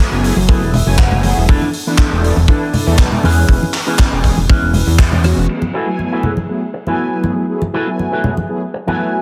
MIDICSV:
0, 0, Header, 1, 6, 480
1, 0, Start_track
1, 0, Key_signature, 3, "minor"
1, 0, Tempo, 500000
1, 1428, Time_signature, 4, 2, 24, 8
1, 8848, End_track
2, 0, Start_track
2, 0, Title_t, "Clean electric guitar"
2, 0, Program_c, 0, 27
2, 461, Note_on_c, 0, 68, 77
2, 468, Note_on_c, 0, 69, 80
2, 468, Note_on_c, 0, 71, 99
2, 470, Note_on_c, 0, 64, 88
2, 705, Note_off_c, 0, 64, 0
2, 709, Note_on_c, 0, 76, 72
2, 890, Note_off_c, 0, 68, 0
2, 891, Note_off_c, 0, 69, 0
2, 892, Note_off_c, 0, 71, 0
2, 932, Note_off_c, 0, 76, 0
2, 950, Note_on_c, 0, 78, 75
2, 1396, Note_off_c, 0, 78, 0
2, 1423, Note_on_c, 0, 62, 108
2, 1429, Note_on_c, 0, 69, 115
2, 1432, Note_on_c, 0, 64, 101
2, 1610, Note_off_c, 0, 62, 0
2, 1612, Note_off_c, 0, 64, 0
2, 1612, Note_off_c, 0, 69, 0
2, 1794, Note_on_c, 0, 62, 85
2, 1799, Note_on_c, 0, 64, 81
2, 1799, Note_on_c, 0, 69, 94
2, 1971, Note_off_c, 0, 62, 0
2, 1973, Note_off_c, 0, 64, 0
2, 1974, Note_off_c, 0, 69, 0
2, 2384, Note_on_c, 0, 62, 90
2, 2391, Note_on_c, 0, 64, 80
2, 2391, Note_on_c, 0, 69, 101
2, 2811, Note_off_c, 0, 62, 0
2, 2812, Note_off_c, 0, 64, 0
2, 2814, Note_off_c, 0, 69, 0
2, 3106, Note_on_c, 0, 61, 93
2, 3114, Note_on_c, 0, 71, 100
2, 3117, Note_on_c, 0, 64, 87
2, 3588, Note_off_c, 0, 61, 0
2, 3589, Note_off_c, 0, 64, 0
2, 3590, Note_off_c, 0, 71, 0
2, 3710, Note_on_c, 0, 61, 87
2, 3718, Note_on_c, 0, 71, 99
2, 3721, Note_on_c, 0, 64, 78
2, 3891, Note_off_c, 0, 61, 0
2, 3892, Note_off_c, 0, 64, 0
2, 3892, Note_off_c, 0, 71, 0
2, 4309, Note_on_c, 0, 61, 93
2, 4313, Note_on_c, 0, 71, 98
2, 4314, Note_on_c, 0, 64, 82
2, 4733, Note_off_c, 0, 61, 0
2, 4734, Note_off_c, 0, 64, 0
2, 4735, Note_off_c, 0, 71, 0
2, 5506, Note_on_c, 0, 66, 85
2, 5511, Note_on_c, 0, 69, 86
2, 5514, Note_on_c, 0, 71, 100
2, 5515, Note_on_c, 0, 64, 97
2, 5520, Note_on_c, 0, 68, 87
2, 5637, Note_off_c, 0, 64, 0
2, 5637, Note_off_c, 0, 66, 0
2, 5637, Note_off_c, 0, 68, 0
2, 5638, Note_off_c, 0, 69, 0
2, 5638, Note_off_c, 0, 71, 0
2, 5874, Note_on_c, 0, 66, 72
2, 5875, Note_on_c, 0, 64, 80
2, 5877, Note_on_c, 0, 69, 72
2, 5878, Note_on_c, 0, 68, 71
2, 5878, Note_on_c, 0, 71, 86
2, 6051, Note_off_c, 0, 64, 0
2, 6052, Note_off_c, 0, 66, 0
2, 6052, Note_off_c, 0, 68, 0
2, 6053, Note_off_c, 0, 69, 0
2, 6053, Note_off_c, 0, 71, 0
2, 6593, Note_on_c, 0, 66, 66
2, 6597, Note_on_c, 0, 69, 68
2, 6598, Note_on_c, 0, 64, 74
2, 6601, Note_on_c, 0, 71, 83
2, 6606, Note_on_c, 0, 68, 69
2, 7011, Note_off_c, 0, 64, 0
2, 7013, Note_off_c, 0, 66, 0
2, 7013, Note_off_c, 0, 68, 0
2, 7013, Note_off_c, 0, 69, 0
2, 7015, Note_off_c, 0, 71, 0
2, 7426, Note_on_c, 0, 66, 89
2, 7432, Note_on_c, 0, 64, 99
2, 7432, Note_on_c, 0, 69, 92
2, 7432, Note_on_c, 0, 71, 103
2, 7438, Note_on_c, 0, 68, 89
2, 7556, Note_off_c, 0, 64, 0
2, 7556, Note_off_c, 0, 66, 0
2, 7557, Note_off_c, 0, 68, 0
2, 7558, Note_off_c, 0, 69, 0
2, 7558, Note_off_c, 0, 71, 0
2, 7794, Note_on_c, 0, 66, 72
2, 7797, Note_on_c, 0, 64, 77
2, 7798, Note_on_c, 0, 69, 71
2, 7799, Note_on_c, 0, 71, 87
2, 7804, Note_on_c, 0, 68, 73
2, 7971, Note_off_c, 0, 64, 0
2, 7972, Note_off_c, 0, 66, 0
2, 7972, Note_off_c, 0, 68, 0
2, 7973, Note_off_c, 0, 69, 0
2, 7974, Note_off_c, 0, 71, 0
2, 8518, Note_on_c, 0, 64, 79
2, 8519, Note_on_c, 0, 66, 70
2, 8522, Note_on_c, 0, 69, 70
2, 8523, Note_on_c, 0, 71, 86
2, 8524, Note_on_c, 0, 68, 70
2, 8626, Note_off_c, 0, 64, 0
2, 8630, Note_on_c, 0, 76, 66
2, 8848, Note_off_c, 0, 66, 0
2, 8848, Note_off_c, 0, 68, 0
2, 8848, Note_off_c, 0, 69, 0
2, 8848, Note_off_c, 0, 71, 0
2, 8848, Note_off_c, 0, 76, 0
2, 8848, End_track
3, 0, Start_track
3, 0, Title_t, "Analog polysynth"
3, 0, Program_c, 1, 90
3, 0, Note_on_c, 1, 54, 83
3, 0, Note_on_c, 1, 57, 74
3, 0, Note_on_c, 1, 59, 75
3, 0, Note_on_c, 1, 64, 74
3, 0, Note_on_c, 1, 80, 89
3, 200, Note_off_c, 1, 54, 0
3, 201, Note_off_c, 1, 57, 0
3, 202, Note_off_c, 1, 59, 0
3, 204, Note_off_c, 1, 64, 0
3, 205, Note_off_c, 1, 80, 0
3, 221, Note_on_c, 1, 54, 92
3, 222, Note_on_c, 1, 57, 82
3, 226, Note_on_c, 1, 59, 83
3, 227, Note_on_c, 1, 64, 81
3, 231, Note_on_c, 1, 68, 97
3, 350, Note_off_c, 1, 54, 0
3, 350, Note_off_c, 1, 57, 0
3, 352, Note_off_c, 1, 59, 0
3, 352, Note_off_c, 1, 64, 0
3, 355, Note_off_c, 1, 68, 0
3, 466, Note_on_c, 1, 54, 86
3, 469, Note_on_c, 1, 57, 74
3, 470, Note_on_c, 1, 59, 74
3, 471, Note_on_c, 1, 64, 77
3, 474, Note_on_c, 1, 68, 91
3, 592, Note_off_c, 1, 54, 0
3, 593, Note_off_c, 1, 57, 0
3, 594, Note_off_c, 1, 59, 0
3, 594, Note_off_c, 1, 64, 0
3, 596, Note_off_c, 1, 68, 0
3, 828, Note_on_c, 1, 54, 91
3, 830, Note_on_c, 1, 57, 86
3, 832, Note_on_c, 1, 59, 84
3, 835, Note_on_c, 1, 64, 88
3, 838, Note_on_c, 1, 80, 100
3, 1157, Note_off_c, 1, 54, 0
3, 1158, Note_off_c, 1, 57, 0
3, 1160, Note_off_c, 1, 59, 0
3, 1161, Note_off_c, 1, 64, 0
3, 1162, Note_off_c, 1, 80, 0
3, 1178, Note_on_c, 1, 54, 86
3, 1180, Note_on_c, 1, 57, 79
3, 1181, Note_on_c, 1, 59, 78
3, 1184, Note_on_c, 1, 64, 79
3, 1187, Note_on_c, 1, 68, 96
3, 1396, Note_off_c, 1, 54, 0
3, 1397, Note_off_c, 1, 57, 0
3, 1398, Note_off_c, 1, 59, 0
3, 1399, Note_off_c, 1, 64, 0
3, 1401, Note_off_c, 1, 68, 0
3, 1421, Note_on_c, 1, 52, 86
3, 1421, Note_on_c, 1, 57, 83
3, 1425, Note_on_c, 1, 59, 81
3, 1549, Note_off_c, 1, 52, 0
3, 1549, Note_off_c, 1, 57, 0
3, 1551, Note_off_c, 1, 59, 0
3, 1791, Note_on_c, 1, 52, 84
3, 1793, Note_on_c, 1, 57, 76
3, 1795, Note_on_c, 1, 59, 75
3, 1797, Note_on_c, 1, 62, 76
3, 1800, Note_on_c, 1, 69, 94
3, 2119, Note_off_c, 1, 52, 0
3, 2120, Note_off_c, 1, 57, 0
3, 2121, Note_off_c, 1, 59, 0
3, 2122, Note_off_c, 1, 62, 0
3, 2124, Note_off_c, 1, 69, 0
3, 2140, Note_on_c, 1, 52, 94
3, 2143, Note_on_c, 1, 57, 82
3, 2146, Note_on_c, 1, 59, 84
3, 2149, Note_on_c, 1, 62, 87
3, 2150, Note_on_c, 1, 69, 97
3, 2269, Note_off_c, 1, 52, 0
3, 2270, Note_off_c, 1, 57, 0
3, 2272, Note_off_c, 1, 59, 0
3, 2273, Note_off_c, 1, 62, 0
3, 2274, Note_off_c, 1, 69, 0
3, 2382, Note_on_c, 1, 52, 83
3, 2385, Note_on_c, 1, 57, 76
3, 2385, Note_on_c, 1, 59, 79
3, 2388, Note_on_c, 1, 62, 76
3, 2392, Note_on_c, 1, 69, 93
3, 2510, Note_off_c, 1, 52, 0
3, 2511, Note_off_c, 1, 57, 0
3, 2511, Note_off_c, 1, 59, 0
3, 2513, Note_off_c, 1, 62, 0
3, 2515, Note_off_c, 1, 69, 0
3, 2750, Note_on_c, 1, 52, 96
3, 2753, Note_on_c, 1, 57, 87
3, 2755, Note_on_c, 1, 59, 86
3, 2758, Note_on_c, 1, 62, 85
3, 2759, Note_on_c, 1, 69, 102
3, 3078, Note_off_c, 1, 52, 0
3, 3080, Note_off_c, 1, 57, 0
3, 3081, Note_off_c, 1, 59, 0
3, 3082, Note_off_c, 1, 62, 0
3, 3083, Note_off_c, 1, 69, 0
3, 3102, Note_on_c, 1, 52, 89
3, 3106, Note_on_c, 1, 56, 79
3, 3108, Note_on_c, 1, 59, 79
3, 3110, Note_on_c, 1, 61, 79
3, 3113, Note_on_c, 1, 68, 98
3, 3318, Note_off_c, 1, 52, 0
3, 3321, Note_off_c, 1, 56, 0
3, 3321, Note_off_c, 1, 59, 0
3, 3322, Note_off_c, 1, 61, 0
3, 3324, Note_off_c, 1, 68, 0
3, 3343, Note_on_c, 1, 52, 88
3, 3343, Note_on_c, 1, 56, 81
3, 3347, Note_on_c, 1, 59, 79
3, 3347, Note_on_c, 1, 61, 82
3, 3352, Note_on_c, 1, 68, 98
3, 3470, Note_off_c, 1, 52, 0
3, 3470, Note_off_c, 1, 56, 0
3, 3472, Note_off_c, 1, 59, 0
3, 3472, Note_off_c, 1, 61, 0
3, 3475, Note_off_c, 1, 68, 0
3, 3710, Note_on_c, 1, 52, 85
3, 3713, Note_on_c, 1, 56, 76
3, 3716, Note_on_c, 1, 59, 73
3, 3719, Note_on_c, 1, 61, 76
3, 3721, Note_on_c, 1, 68, 92
3, 4039, Note_off_c, 1, 52, 0
3, 4040, Note_off_c, 1, 56, 0
3, 4042, Note_off_c, 1, 59, 0
3, 4043, Note_off_c, 1, 61, 0
3, 4044, Note_off_c, 1, 68, 0
3, 4060, Note_on_c, 1, 52, 91
3, 4065, Note_on_c, 1, 56, 80
3, 4065, Note_on_c, 1, 59, 83
3, 4069, Note_on_c, 1, 61, 82
3, 4070, Note_on_c, 1, 68, 96
3, 4189, Note_off_c, 1, 52, 0
3, 4191, Note_off_c, 1, 56, 0
3, 4191, Note_off_c, 1, 59, 0
3, 4193, Note_off_c, 1, 61, 0
3, 4194, Note_off_c, 1, 68, 0
3, 4306, Note_on_c, 1, 52, 83
3, 4309, Note_on_c, 1, 56, 77
3, 4311, Note_on_c, 1, 59, 75
3, 4314, Note_on_c, 1, 61, 78
3, 4315, Note_on_c, 1, 68, 92
3, 4432, Note_off_c, 1, 52, 0
3, 4433, Note_off_c, 1, 56, 0
3, 4434, Note_off_c, 1, 59, 0
3, 4436, Note_off_c, 1, 61, 0
3, 4436, Note_off_c, 1, 68, 0
3, 4915, Note_on_c, 1, 52, 74
3, 4919, Note_on_c, 1, 56, 68
3, 4921, Note_on_c, 1, 59, 66
3, 4923, Note_on_c, 1, 61, 66
3, 4925, Note_on_c, 1, 73, 78
3, 5011, Note_off_c, 1, 52, 0
3, 5013, Note_off_c, 1, 56, 0
3, 5014, Note_off_c, 1, 59, 0
3, 5015, Note_off_c, 1, 61, 0
3, 5016, Note_off_c, 1, 73, 0
3, 5027, Note_on_c, 1, 52, 96
3, 5029, Note_on_c, 1, 56, 86
3, 5030, Note_on_c, 1, 59, 89
3, 5034, Note_on_c, 1, 61, 84
3, 5038, Note_on_c, 1, 66, 104
3, 5241, Note_off_c, 1, 52, 0
3, 5242, Note_off_c, 1, 56, 0
3, 5242, Note_off_c, 1, 59, 0
3, 5244, Note_off_c, 1, 61, 0
3, 5246, Note_off_c, 1, 66, 0
3, 5266, Note_on_c, 1, 54, 80
3, 5270, Note_on_c, 1, 57, 71
3, 5273, Note_on_c, 1, 59, 74
3, 5275, Note_on_c, 1, 64, 77
3, 5276, Note_on_c, 1, 68, 88
3, 5392, Note_off_c, 1, 54, 0
3, 5394, Note_off_c, 1, 57, 0
3, 5395, Note_off_c, 1, 59, 0
3, 5396, Note_off_c, 1, 64, 0
3, 5397, Note_off_c, 1, 68, 0
3, 5632, Note_on_c, 1, 54, 75
3, 5633, Note_on_c, 1, 57, 71
3, 5637, Note_on_c, 1, 59, 71
3, 5639, Note_on_c, 1, 64, 73
3, 5640, Note_on_c, 1, 80, 88
3, 5959, Note_off_c, 1, 54, 0
3, 5960, Note_off_c, 1, 57, 0
3, 5962, Note_off_c, 1, 59, 0
3, 5963, Note_off_c, 1, 64, 0
3, 5963, Note_off_c, 1, 80, 0
3, 5985, Note_on_c, 1, 54, 83
3, 5985, Note_on_c, 1, 57, 77
3, 5990, Note_on_c, 1, 59, 74
3, 5991, Note_on_c, 1, 64, 76
3, 5995, Note_on_c, 1, 68, 90
3, 6111, Note_off_c, 1, 54, 0
3, 6111, Note_off_c, 1, 57, 0
3, 6114, Note_off_c, 1, 59, 0
3, 6114, Note_off_c, 1, 64, 0
3, 6116, Note_off_c, 1, 68, 0
3, 6224, Note_on_c, 1, 54, 78
3, 6225, Note_on_c, 1, 57, 72
3, 6229, Note_on_c, 1, 59, 72
3, 6232, Note_on_c, 1, 64, 72
3, 6233, Note_on_c, 1, 68, 89
3, 6351, Note_off_c, 1, 54, 0
3, 6351, Note_off_c, 1, 57, 0
3, 6353, Note_off_c, 1, 59, 0
3, 6355, Note_off_c, 1, 64, 0
3, 6355, Note_off_c, 1, 68, 0
3, 6591, Note_on_c, 1, 54, 86
3, 6593, Note_on_c, 1, 57, 82
3, 6597, Note_on_c, 1, 59, 83
3, 6599, Note_on_c, 1, 64, 81
3, 6602, Note_on_c, 1, 80, 93
3, 6919, Note_off_c, 1, 54, 0
3, 6920, Note_off_c, 1, 57, 0
3, 6922, Note_off_c, 1, 59, 0
3, 6923, Note_off_c, 1, 64, 0
3, 6924, Note_off_c, 1, 80, 0
3, 6943, Note_on_c, 1, 54, 82
3, 6946, Note_on_c, 1, 57, 75
3, 6949, Note_on_c, 1, 59, 73
3, 6951, Note_on_c, 1, 64, 73
3, 6953, Note_on_c, 1, 68, 87
3, 7159, Note_off_c, 1, 54, 0
3, 7160, Note_off_c, 1, 57, 0
3, 7162, Note_off_c, 1, 59, 0
3, 7163, Note_off_c, 1, 64, 0
3, 7164, Note_off_c, 1, 68, 0
3, 7183, Note_on_c, 1, 54, 82
3, 7186, Note_on_c, 1, 57, 72
3, 7189, Note_on_c, 1, 59, 75
3, 7189, Note_on_c, 1, 64, 76
3, 7192, Note_on_c, 1, 68, 90
3, 7310, Note_off_c, 1, 54, 0
3, 7312, Note_off_c, 1, 57, 0
3, 7313, Note_off_c, 1, 59, 0
3, 7313, Note_off_c, 1, 64, 0
3, 7315, Note_off_c, 1, 68, 0
3, 7550, Note_on_c, 1, 54, 77
3, 7552, Note_on_c, 1, 57, 73
3, 7553, Note_on_c, 1, 59, 71
3, 7557, Note_on_c, 1, 64, 71
3, 7561, Note_on_c, 1, 80, 83
3, 7879, Note_off_c, 1, 54, 0
3, 7879, Note_off_c, 1, 57, 0
3, 7880, Note_off_c, 1, 59, 0
3, 7882, Note_off_c, 1, 64, 0
3, 7884, Note_off_c, 1, 80, 0
3, 7902, Note_on_c, 1, 54, 83
3, 7905, Note_on_c, 1, 57, 75
3, 7906, Note_on_c, 1, 59, 77
3, 7910, Note_on_c, 1, 64, 78
3, 7913, Note_on_c, 1, 68, 96
3, 8030, Note_off_c, 1, 54, 0
3, 8031, Note_off_c, 1, 57, 0
3, 8032, Note_off_c, 1, 59, 0
3, 8034, Note_off_c, 1, 64, 0
3, 8035, Note_off_c, 1, 68, 0
3, 8142, Note_on_c, 1, 54, 79
3, 8143, Note_on_c, 1, 57, 70
3, 8146, Note_on_c, 1, 59, 71
3, 8149, Note_on_c, 1, 64, 70
3, 8151, Note_on_c, 1, 68, 90
3, 8270, Note_off_c, 1, 54, 0
3, 8270, Note_off_c, 1, 57, 0
3, 8272, Note_off_c, 1, 59, 0
3, 8273, Note_off_c, 1, 64, 0
3, 8274, Note_off_c, 1, 68, 0
3, 8508, Note_on_c, 1, 54, 89
3, 8511, Note_on_c, 1, 57, 83
3, 8513, Note_on_c, 1, 59, 82
3, 8516, Note_on_c, 1, 64, 82
3, 8518, Note_on_c, 1, 80, 97
3, 8837, Note_off_c, 1, 54, 0
3, 8839, Note_off_c, 1, 57, 0
3, 8840, Note_off_c, 1, 59, 0
3, 8842, Note_off_c, 1, 64, 0
3, 8843, Note_off_c, 1, 80, 0
3, 8848, End_track
4, 0, Start_track
4, 0, Title_t, "Analog synth bass"
4, 0, Program_c, 2, 38
4, 113, Note_on_c, 2, 30, 76
4, 307, Note_off_c, 2, 30, 0
4, 351, Note_on_c, 2, 30, 86
4, 592, Note_on_c, 2, 28, 99
4, 607, Note_off_c, 2, 30, 0
4, 787, Note_off_c, 2, 28, 0
4, 831, Note_on_c, 2, 30, 100
4, 1280, Note_off_c, 2, 30, 0
4, 1315, Note_on_c, 2, 28, 92
4, 1409, Note_off_c, 2, 28, 0
4, 1428, Note_on_c, 2, 28, 96
4, 1535, Note_off_c, 2, 28, 0
4, 2035, Note_on_c, 2, 28, 76
4, 2228, Note_off_c, 2, 28, 0
4, 2274, Note_on_c, 2, 28, 84
4, 2369, Note_off_c, 2, 28, 0
4, 2754, Note_on_c, 2, 40, 83
4, 2849, Note_off_c, 2, 40, 0
4, 2862, Note_on_c, 2, 35, 78
4, 2972, Note_off_c, 2, 35, 0
4, 3108, Note_on_c, 2, 40, 80
4, 3311, Note_off_c, 2, 40, 0
4, 3345, Note_on_c, 2, 28, 101
4, 3453, Note_off_c, 2, 28, 0
4, 3956, Note_on_c, 2, 28, 79
4, 4148, Note_off_c, 2, 28, 0
4, 4197, Note_on_c, 2, 28, 82
4, 4290, Note_off_c, 2, 28, 0
4, 4435, Note_on_c, 2, 28, 93
4, 4628, Note_off_c, 2, 28, 0
4, 4677, Note_on_c, 2, 40, 84
4, 5122, Note_off_c, 2, 40, 0
4, 5157, Note_on_c, 2, 28, 83
4, 5250, Note_off_c, 2, 28, 0
4, 8848, End_track
5, 0, Start_track
5, 0, Title_t, "Muted clean electric guitar strokes"
5, 226, Note_on_c, 9, 29, 32
5, 322, Note_off_c, 9, 29, 0
5, 1313, Note_on_c, 9, 29, 84
5, 1409, Note_off_c, 9, 29, 0
5, 2146, Note_on_c, 9, 29, 33
5, 2242, Note_off_c, 9, 29, 0
5, 4069, Note_on_c, 9, 29, 32
5, 4165, Note_off_c, 9, 29, 0
5, 5159, Note_on_c, 9, 29, 83
5, 5255, Note_off_c, 9, 29, 0
5, 5747, Note_on_c, 9, 29, 29
5, 5843, Note_off_c, 9, 29, 0
5, 6227, Note_on_c, 9, 29, 30
5, 6323, Note_off_c, 9, 29, 0
5, 6466, Note_on_c, 9, 29, 97
5, 6562, Note_off_c, 9, 29, 0
5, 7669, Note_on_c, 9, 29, 29
5, 7765, Note_off_c, 9, 29, 0
5, 8152, Note_on_c, 9, 29, 29
5, 8248, Note_off_c, 9, 29, 0
5, 8388, Note_on_c, 9, 29, 96
5, 8484, Note_off_c, 9, 29, 0
5, 8848, End_track
6, 0, Start_track
6, 0, Title_t, "Drums"
6, 231, Note_on_c, 9, 46, 104
6, 327, Note_off_c, 9, 46, 0
6, 347, Note_on_c, 9, 63, 76
6, 443, Note_off_c, 9, 63, 0
6, 468, Note_on_c, 9, 36, 105
6, 564, Note_off_c, 9, 36, 0
6, 706, Note_on_c, 9, 46, 102
6, 707, Note_on_c, 9, 64, 87
6, 802, Note_off_c, 9, 46, 0
6, 803, Note_off_c, 9, 64, 0
6, 832, Note_on_c, 9, 63, 61
6, 928, Note_off_c, 9, 63, 0
6, 944, Note_on_c, 9, 39, 114
6, 946, Note_on_c, 9, 36, 110
6, 1040, Note_off_c, 9, 39, 0
6, 1042, Note_off_c, 9, 36, 0
6, 1069, Note_on_c, 9, 64, 87
6, 1165, Note_off_c, 9, 64, 0
6, 1180, Note_on_c, 9, 46, 103
6, 1189, Note_on_c, 9, 63, 89
6, 1276, Note_off_c, 9, 46, 0
6, 1285, Note_off_c, 9, 63, 0
6, 1429, Note_on_c, 9, 36, 116
6, 1525, Note_off_c, 9, 36, 0
6, 1555, Note_on_c, 9, 63, 80
6, 1651, Note_off_c, 9, 63, 0
6, 1663, Note_on_c, 9, 46, 100
6, 1759, Note_off_c, 9, 46, 0
6, 1900, Note_on_c, 9, 63, 55
6, 1901, Note_on_c, 9, 39, 113
6, 1902, Note_on_c, 9, 36, 107
6, 1996, Note_off_c, 9, 63, 0
6, 1997, Note_off_c, 9, 39, 0
6, 1998, Note_off_c, 9, 36, 0
6, 2152, Note_on_c, 9, 46, 99
6, 2248, Note_off_c, 9, 46, 0
6, 2273, Note_on_c, 9, 63, 86
6, 2369, Note_off_c, 9, 63, 0
6, 2382, Note_on_c, 9, 36, 99
6, 2478, Note_off_c, 9, 36, 0
6, 2625, Note_on_c, 9, 64, 95
6, 2627, Note_on_c, 9, 46, 108
6, 2721, Note_off_c, 9, 64, 0
6, 2723, Note_off_c, 9, 46, 0
6, 2755, Note_on_c, 9, 63, 59
6, 2851, Note_off_c, 9, 63, 0
6, 2863, Note_on_c, 9, 36, 117
6, 2864, Note_on_c, 9, 39, 105
6, 2959, Note_off_c, 9, 36, 0
6, 2960, Note_off_c, 9, 39, 0
6, 2996, Note_on_c, 9, 64, 82
6, 3092, Note_off_c, 9, 64, 0
6, 3104, Note_on_c, 9, 63, 85
6, 3116, Note_on_c, 9, 46, 112
6, 3200, Note_off_c, 9, 63, 0
6, 3212, Note_off_c, 9, 46, 0
6, 3347, Note_on_c, 9, 36, 97
6, 3443, Note_off_c, 9, 36, 0
6, 3482, Note_on_c, 9, 63, 88
6, 3578, Note_off_c, 9, 63, 0
6, 3586, Note_on_c, 9, 39, 66
6, 3592, Note_on_c, 9, 46, 109
6, 3682, Note_off_c, 9, 39, 0
6, 3688, Note_off_c, 9, 46, 0
6, 3827, Note_on_c, 9, 39, 115
6, 3829, Note_on_c, 9, 63, 58
6, 3830, Note_on_c, 9, 36, 111
6, 3923, Note_off_c, 9, 39, 0
6, 3925, Note_off_c, 9, 63, 0
6, 3926, Note_off_c, 9, 36, 0
6, 4069, Note_on_c, 9, 36, 60
6, 4071, Note_on_c, 9, 46, 100
6, 4165, Note_off_c, 9, 36, 0
6, 4167, Note_off_c, 9, 46, 0
6, 4194, Note_on_c, 9, 63, 86
6, 4290, Note_off_c, 9, 63, 0
6, 4315, Note_on_c, 9, 36, 113
6, 4411, Note_off_c, 9, 36, 0
6, 4546, Note_on_c, 9, 64, 89
6, 4549, Note_on_c, 9, 46, 111
6, 4642, Note_off_c, 9, 64, 0
6, 4645, Note_off_c, 9, 46, 0
6, 4673, Note_on_c, 9, 63, 68
6, 4769, Note_off_c, 9, 63, 0
6, 4788, Note_on_c, 9, 36, 119
6, 4790, Note_on_c, 9, 39, 120
6, 4884, Note_off_c, 9, 36, 0
6, 4886, Note_off_c, 9, 39, 0
6, 4912, Note_on_c, 9, 64, 88
6, 5008, Note_off_c, 9, 64, 0
6, 5026, Note_on_c, 9, 63, 81
6, 5028, Note_on_c, 9, 46, 98
6, 5035, Note_on_c, 9, 37, 89
6, 5122, Note_off_c, 9, 63, 0
6, 5124, Note_off_c, 9, 46, 0
6, 5131, Note_off_c, 9, 37, 0
6, 5271, Note_on_c, 9, 49, 66
6, 5367, Note_off_c, 9, 49, 0
6, 5393, Note_on_c, 9, 63, 83
6, 5489, Note_off_c, 9, 63, 0
6, 5750, Note_on_c, 9, 63, 56
6, 5846, Note_off_c, 9, 63, 0
6, 5983, Note_on_c, 9, 64, 84
6, 6079, Note_off_c, 9, 64, 0
6, 6113, Note_on_c, 9, 63, 80
6, 6209, Note_off_c, 9, 63, 0
6, 6592, Note_on_c, 9, 63, 57
6, 6688, Note_off_c, 9, 63, 0
6, 6947, Note_on_c, 9, 63, 88
6, 7043, Note_off_c, 9, 63, 0
6, 7311, Note_on_c, 9, 63, 84
6, 7407, Note_off_c, 9, 63, 0
6, 7674, Note_on_c, 9, 63, 54
6, 7770, Note_off_c, 9, 63, 0
6, 7910, Note_on_c, 9, 64, 88
6, 8006, Note_off_c, 9, 64, 0
6, 8038, Note_on_c, 9, 63, 80
6, 8134, Note_off_c, 9, 63, 0
6, 8524, Note_on_c, 9, 63, 62
6, 8620, Note_off_c, 9, 63, 0
6, 8848, End_track
0, 0, End_of_file